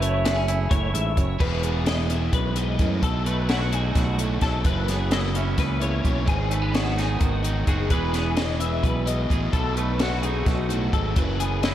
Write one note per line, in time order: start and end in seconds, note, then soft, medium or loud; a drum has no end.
0.00 0.67 F#1 medium
0.00 0.70 F#2 medium
0.00 1.40 A3 medium
0.00 0.47 E4 medium
0.00 0.25 C#5 medium
0.00 0.90 E5 medium
0.00 closed hi-hat medium
0.25 0.36 B3 medium
0.25 0.71 G#4 medium
0.25 snare loud
0.25 closed hi-hat medium
0.36 1.40 C#4 medium
0.48 1.87 E4 medium
0.48 closed hi-hat medium
0.71 0.92 F#1 medium
0.71 0.93 A2 medium
0.71 0.94 C#5 medium
0.71 kick loud
0.71 closed hi-hat medium
0.93 1.16 A1 medium
0.93 1.16 G#2 medium
0.93 1.18 E5 medium
0.93 closed hi-hat medium
1.17 1.39 F#1 medium
1.17 1.40 F#2 medium
1.17 1.40 C#5 medium
1.17 kick medium
1.17 closed hi-hat medium
1.40 2.29 E1 medium
1.40 2.32 E2 medium
1.40 1.84 E3 medium
1.40 1.64 G#3 medium
1.40 1.64 B3 medium
1.40 1.62 E4 medium
1.40 1.64 B4 medium
1.40 kick medium
1.40 crash medium
1.63 1.86 G#3 medium
1.63 1.87 B3 medium
1.63 3.26 B3 medium
1.63 1.87 E4 medium
1.63 1.87 G#4 medium
1.63 closed hi-hat medium
1.86 2.32 E3 medium
1.86 2.11 G#3 medium
1.86 2.10 B3 medium
1.86 2.07 E4 medium
1.86 3.00 G#4 medium
1.86 2.10 D#5 medium
1.86 snare loud
1.86 closed hi-hat medium
2.09 2.58 G#3 medium
2.09 2.57 B3 medium
2.09 2.54 E4 medium
2.09 2.33 E5 medium
2.09 closed hi-hat soft
2.33 2.76 B1 medium
2.33 2.55 F#2 medium
2.33 2.57 B4 medium
2.33 kick medium
2.33 closed hi-hat medium
2.56 2.79 G#2 medium
2.56 2.78 G#3 medium
2.56 2.80 B3 medium
2.56 2.80 E4 medium
2.56 3.03 D#5 medium
2.56 closed hi-hat medium
2.79 3.01 F#2 medium
2.79 3.03 A2 medium
2.79 3.01 E3 medium
2.79 3.01 G#3 medium
2.79 3.03 B3 medium
2.79 3.02 E4 medium
2.79 kick medium
2.79 closed hi-hat soft
3.01 3.91 B1 medium
3.01 3.48 B2 medium
3.01 3.94 B2 medium
3.01 3.27 F#3 medium
3.01 3.26 A3 medium
3.01 3.24 D#4 medium
3.01 3.26 A4 medium
3.01 kick medium
3.01 closed hi-hat medium
3.25 3.50 F#3 medium
3.25 4.65 A3 medium
3.25 3.50 A3 medium
3.25 3.50 D#4 medium
3.25 3.49 B4 medium
3.25 closed hi-hat medium
3.49 3.95 B2 medium
3.49 3.75 F#3 medium
3.49 3.73 A3 medium
3.49 3.71 D#4 loud
3.49 3.61 E4 medium
3.49 3.73 F#4 medium
3.49 snare medium
3.49 closed hi-hat medium
3.61 4.65 F#4 soft
3.72 4.21 F#3 soft
3.72 4.19 A3 medium
3.72 4.17 D#4 medium
3.72 4.63 D#4 medium
3.72 3.96 G#4 medium
3.72 closed hi-hat medium
3.95 4.39 B1 medium
3.95 4.18 B2 medium
3.95 4.42 F#4 medium
3.95 kick medium
3.95 snare soft
3.95 closed hi-hat medium
4.18 4.41 A2 medium
4.18 4.43 F#3 soft
4.18 4.43 A3 medium
4.18 4.44 D#4 medium
4.18 closed hi-hat medium
4.41 4.66 B1 medium
4.41 4.65 G#2 medium
4.41 4.64 B2 medium
4.41 4.66 F#3 medium
4.41 4.65 A3 medium
4.41 4.65 D#4 medium
4.41 4.65 A4 medium
4.41 kick medium
4.41 snare soft
4.41 closed hi-hat medium
4.65 5.54 F#1 medium
4.65 5.10 F#2 medium
4.65 5.81 F#2 medium
4.65 5.11 C#3 medium
4.65 4.91 E3 medium
4.65 4.89 A#3 medium
4.65 4.87 E4 medium
4.65 4.88 B4 medium
4.65 kick medium
4.65 closed hi-hat medium
4.88 5.11 E3 medium
4.88 5.12 A#3 medium
4.88 6.50 B3 soft
4.88 5.13 E4 medium
4.88 5.12 G#4 medium
4.88 snare soft
4.88 closed hi-hat medium
5.11 5.58 F#2 medium
5.11 5.58 C#3 medium
5.11 5.35 E3 medium
5.11 5.34 A#3 medium
5.11 6.28 E4 medium
5.11 5.32 E4 medium
5.11 5.35 D#5 medium
5.11 snare loud
5.11 closed hi-hat medium
5.34 5.82 E3 soft
5.34 5.81 A#3 medium
5.34 6.26 C#4 medium
5.34 5.79 E4 medium
5.34 5.58 E5 medium
5.34 closed hi-hat medium
5.58 6.02 C#2 medium
5.58 5.82 B4 medium
5.58 kick medium
5.58 snare soft
5.58 closed hi-hat medium
5.80 6.04 E2 medium
5.80 6.03 E3 soft
5.80 6.04 A#3 medium
5.80 6.05 E4 medium
5.80 6.28 C#5 medium
5.80 closed hi-hat medium
6.03 6.26 B1 medium
6.03 6.26 F#2 medium
6.03 6.26 C#3 medium
6.03 6.26 E3 medium
6.03 6.27 A#3 medium
6.03 6.27 E4 medium
6.03 kick medium
6.03 closed hi-hat soft
6.26 7.17 G#1 medium
6.26 6.72 G#2 medium
6.26 7.87 G#2 medium
6.26 6.72 D#3 medium
6.26 6.52 G#3 medium
6.26 6.50 B3 medium
6.26 6.49 D#4 loud
6.26 6.52 G#4 medium
6.26 kick medium
6.26 closed hi-hat medium
6.49 6.74 G#3 soft
6.49 6.62 A3 medium
6.49 6.75 B3 medium
6.49 6.76 D#4 medium
6.49 6.74 B4 medium
6.49 closed hi-hat medium
6.62 7.90 B3 soft
6.73 7.20 G#2 medium
6.73 7.21 D#3 medium
6.73 6.99 G#3 medium
6.73 6.98 B3 medium
6.73 6.96 D#4 medium
6.73 6.99 F#4 medium
6.73 7.67 G#4 medium
6.73 snare medium
6.73 closed hi-hat medium
6.97 7.45 G#3 medium
6.97 7.45 B3 medium
6.97 7.42 D#4 medium
6.97 7.43 D#4 medium
6.97 7.21 G#4 medium
6.97 snare soft
6.97 closed hi-hat soft
7.20 7.64 G#1 medium
7.20 7.87 D#3 medium
7.20 7.67 F#4 medium
7.20 kick medium
7.20 closed hi-hat medium
7.43 7.67 G#3 medium
7.43 7.69 B3 medium
7.43 7.70 D#4 medium
7.43 7.94 D#4 medium
7.43 closed hi-hat medium
7.67 7.90 F#1 medium
7.67 7.89 D#3 medium
7.67 7.90 G#3 medium
7.67 7.92 B3 medium
7.67 7.92 D#4 medium
7.67 7.93 F#4 medium
7.67 7.91 G#4 medium
7.67 kick medium
7.67 closed hi-hat medium
7.90 8.80 E1 medium
7.90 9.54 E2 medium
7.90 8.34 E3 medium
7.90 9.54 E3 medium
7.90 8.15 G#3 medium
7.90 8.14 B3 medium
7.90 8.12 E4 medium
7.90 8.38 G#4 medium
7.90 8.14 B4 medium
7.90 kick medium
7.90 closed hi-hat medium
8.13 8.36 G#3 soft
8.13 8.38 B3 medium
8.13 9.78 B3 medium
8.13 8.38 E4 medium
8.13 8.37 G#4 medium
8.13 snare soft
8.13 closed hi-hat medium
8.36 8.83 E3 medium
8.36 8.62 G#3 medium
8.36 8.61 B3 medium
8.36 8.59 E4 medium
8.36 9.30 G#4 medium
8.36 8.60 D#5 medium
8.36 snare loud
8.36 closed hi-hat medium
8.60 9.08 G#3 soft
8.60 9.07 B3 medium
8.60 9.05 E4 medium
8.60 8.84 E5 medium
8.60 closed hi-hat medium
8.83 9.27 B1 medium
8.83 9.52 B2 medium
8.83 9.07 B4 medium
8.83 kick medium
8.83 closed hi-hat medium
9.06 9.29 G#3 medium
9.06 9.31 B3 medium
9.06 9.31 E4 medium
9.06 9.52 D#5 medium
9.06 closed hi-hat medium
9.29 9.52 A1 medium
9.29 9.52 E3 medium
9.29 9.52 G#3 medium
9.29 9.54 B3 medium
9.29 9.53 E4 medium
9.29 9.51 G#4 soft
9.29 kick medium
9.29 closed hi-hat medium
9.52 10.43 B1 medium
9.52 9.98 B2 medium
9.52 10.47 B2 medium
9.52 9.79 F#3 medium
9.52 9.77 A3 medium
9.52 9.75 D#4 medium
9.52 9.76 A4 medium
9.52 kick medium
9.52 closed hi-hat medium
9.76 10.01 F#3 soft
9.76 10.00 A3 medium
9.76 11.17 A3 medium
9.76 10.02 D#4 medium
9.76 10.00 B4 medium
9.76 closed hi-hat soft
9.99 10.46 B2 medium
9.99 10.26 F#3 medium
9.99 10.24 A3 medium
9.99 10.22 D#4 loud
9.99 10.22 F#4 medium
9.99 11.64 F#4 medium
9.99 snare loud
9.99 closed hi-hat medium
10.23 10.72 F#3 medium
10.23 10.69 A3 medium
10.23 10.68 D#4 medium
10.23 11.15 D#4 medium
10.23 10.46 G#4 medium
10.23 closed hi-hat soft
10.46 10.90 B1 medium
10.46 10.71 B2 medium
10.46 10.93 F#4 medium
10.46 kick medium
10.46 snare soft
10.46 closed hi-hat medium
10.69 10.94 A2 medium
10.69 10.93 F#3 medium
10.69 10.94 A3 medium
10.69 10.94 D#4 medium
10.69 closed hi-hat medium
10.92 11.17 G#1 medium
10.92 11.17 G#2 medium
10.92 11.15 B2 medium
10.92 11.17 F#3 medium
10.92 11.16 A3 medium
10.92 11.16 D#4 medium
10.92 11.17 A4 medium
10.92 kick medium
10.92 closed hi-hat soft
11.16 11.74 F#1 loud
11.16 11.62 F#2 medium
11.16 11.74 F#2 medium
11.16 11.63 C#3 medium
11.16 11.42 E3 medium
11.16 11.40 A#3 medium
11.16 11.39 E4 loud
11.16 11.40 B4 medium
11.16 kick medium
11.16 closed hi-hat medium
11.39 11.64 E3 medium
11.39 11.64 A#3 medium
11.39 11.74 B3 medium
11.39 11.66 E4 medium
11.39 11.63 G#4 medium
11.39 closed hi-hat medium
11.63 11.74 F#2 medium
11.63 11.74 C#3 medium
11.63 11.74 E3 loud
11.63 11.74 A#3 loud
11.63 11.74 E4 medium
11.63 11.74 D#5 medium
11.63 snare loud
11.63 closed hi-hat medium